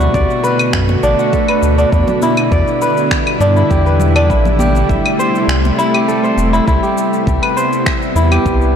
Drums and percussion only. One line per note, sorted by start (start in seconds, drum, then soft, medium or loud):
0.00 muted conga soft
0.00 shaker soft
0.14 kick loud
0.14 shaker soft
0.30 shaker soft
0.44 shaker medium
0.59 claves medium
0.59 shaker soft
0.73 finger snap medium
0.73 kick loud
0.73 shaker soft
0.89 muted conga medium
0.89 shaker soft
1.03 shaker medium
1.19 shaker soft
1.33 kick medium
1.33 shaker soft
1.48 claves medium
1.48 shaker soft
1.63 shaker medium
1.78 shaker soft
1.92 kick medium
1.92 shaker soft
2.07 muted conga medium
2.07 low conga medium
2.07 shaker soft
2.22 high conga medium
2.22 shaker medium
2.37 muted conga soft
2.37 claves medium
2.37 shaker soft
2.52 kick medium
2.52 shaker soft
2.67 shaker soft
2.82 shaker medium
2.97 shaker soft
3.11 finger snap medium
3.11 kick loud
3.11 shaker soft
3.27 claves medium
3.27 shaker soft
3.41 muted conga medium
3.41 shaker medium
3.56 shaker soft
3.71 kick medium
3.71 shaker soft
3.86 shaker soft
4.00 low conga medium
4.00 shaker medium
4.16 claves medium
4.16 shaker soft
4.30 kick medium
4.30 shaker soft
4.45 muted conga soft
4.45 high conga soft
4.45 low conga medium
4.45 shaker soft
4.59 high conga medium
4.59 low conga medium
4.59 shaker medium
4.75 muted conga soft
4.75 shaker soft
4.89 kick medium
4.89 shaker soft
5.06 claves medium
5.06 shaker soft
5.19 high conga soft
5.19 shaker medium
5.35 shaker soft
5.49 finger snap medium
5.49 shaker soft
5.65 muted conga medium
5.65 shaker soft
5.79 shaker medium
5.94 claves medium
5.94 shaker soft
6.09 shaker soft
6.24 shaker soft
6.38 muted conga soft
6.38 shaker medium
6.54 shaker soft
6.68 kick loud
6.68 shaker soft
6.83 shaker soft
6.98 shaker medium
7.13 shaker soft
7.27 kick loud
7.27 shaker soft
7.43 claves medium
7.43 shaker soft
7.57 shaker medium
7.73 shaker soft
7.86 finger snap medium
7.86 kick loud
7.86 shaker soft
8.02 shaker soft
8.16 shaker medium
8.32 claves medium
8.32 shaker soft
8.46 kick loud
8.46 shaker soft
8.61 shaker soft